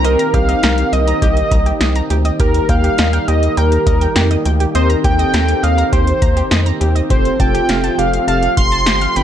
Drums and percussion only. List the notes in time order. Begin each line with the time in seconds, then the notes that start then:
0.05 closed hi-hat
0.19 closed hi-hat
0.34 kick, closed hi-hat
0.49 closed hi-hat
0.63 snare, closed hi-hat
0.78 closed hi-hat
0.93 closed hi-hat
1.08 closed hi-hat
1.22 kick, closed hi-hat
1.37 closed hi-hat
1.51 kick, closed hi-hat
1.66 closed hi-hat
1.81 snare, closed hi-hat
1.95 closed hi-hat
2.10 closed hi-hat
2.25 closed hi-hat
2.40 kick, closed hi-hat
2.54 closed hi-hat
2.69 kick, closed hi-hat
2.84 closed hi-hat
2.98 snare, closed hi-hat
3.13 closed hi-hat
3.28 closed hi-hat
3.43 closed hi-hat
3.57 closed hi-hat
3.72 closed hi-hat
3.87 kick, closed hi-hat
4.01 closed hi-hat
4.16 snare, closed hi-hat
4.31 closed hi-hat
4.45 closed hi-hat
4.60 closed hi-hat
4.75 closed hi-hat
4.90 closed hi-hat
5.04 kick, closed hi-hat
5.19 closed hi-hat
5.34 snare, closed hi-hat
5.48 closed hi-hat
5.64 closed hi-hat
5.78 closed hi-hat
5.93 kick, closed hi-hat
6.07 closed hi-hat
6.22 kick, closed hi-hat
6.37 closed hi-hat
6.51 snare, closed hi-hat
6.66 closed hi-hat
6.81 closed hi-hat
6.96 closed hi-hat
7.10 kick, closed hi-hat
7.25 closed hi-hat
7.40 kick, closed hi-hat
7.55 closed hi-hat
7.69 snare, closed hi-hat
7.84 closed hi-hat
7.99 closed hi-hat
8.13 closed hi-hat
8.28 closed hi-hat
8.43 closed hi-hat
8.57 kick, closed hi-hat
8.72 closed hi-hat
8.86 snare, closed hi-hat
9.01 closed hi-hat
9.16 closed hi-hat